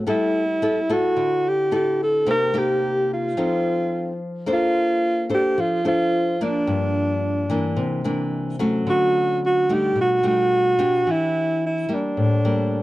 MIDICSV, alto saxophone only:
0, 0, Header, 1, 2, 480
1, 0, Start_track
1, 0, Tempo, 549954
1, 64, Time_signature, 4, 2, 24, 8
1, 11195, End_track
2, 0, Start_track
2, 0, Title_t, "Alto saxophone"
2, 0, Program_c, 0, 65
2, 84, Note_on_c, 0, 64, 94
2, 804, Note_on_c, 0, 66, 89
2, 817, Note_off_c, 0, 64, 0
2, 1298, Note_on_c, 0, 67, 93
2, 1311, Note_off_c, 0, 66, 0
2, 1521, Note_off_c, 0, 67, 0
2, 1532, Note_on_c, 0, 67, 83
2, 1743, Note_off_c, 0, 67, 0
2, 1772, Note_on_c, 0, 69, 86
2, 1983, Note_off_c, 0, 69, 0
2, 2010, Note_on_c, 0, 70, 110
2, 2253, Note_on_c, 0, 67, 94
2, 2266, Note_off_c, 0, 70, 0
2, 2719, Note_off_c, 0, 67, 0
2, 2736, Note_on_c, 0, 65, 81
2, 3646, Note_off_c, 0, 65, 0
2, 3954, Note_on_c, 0, 65, 105
2, 4615, Note_off_c, 0, 65, 0
2, 4663, Note_on_c, 0, 67, 98
2, 4891, Note_on_c, 0, 65, 96
2, 4904, Note_off_c, 0, 67, 0
2, 5118, Note_off_c, 0, 65, 0
2, 5129, Note_on_c, 0, 65, 101
2, 5607, Note_on_c, 0, 62, 82
2, 5620, Note_off_c, 0, 65, 0
2, 7035, Note_off_c, 0, 62, 0
2, 7769, Note_on_c, 0, 66, 103
2, 8203, Note_off_c, 0, 66, 0
2, 8256, Note_on_c, 0, 66, 94
2, 8497, Note_on_c, 0, 67, 97
2, 8510, Note_off_c, 0, 66, 0
2, 8720, Note_off_c, 0, 67, 0
2, 8737, Note_on_c, 0, 66, 97
2, 8944, Note_off_c, 0, 66, 0
2, 8972, Note_on_c, 0, 66, 104
2, 9694, Note_on_c, 0, 64, 95
2, 9707, Note_off_c, 0, 66, 0
2, 10158, Note_off_c, 0, 64, 0
2, 10179, Note_on_c, 0, 64, 78
2, 10421, Note_on_c, 0, 62, 77
2, 10434, Note_off_c, 0, 64, 0
2, 11195, Note_off_c, 0, 62, 0
2, 11195, End_track
0, 0, End_of_file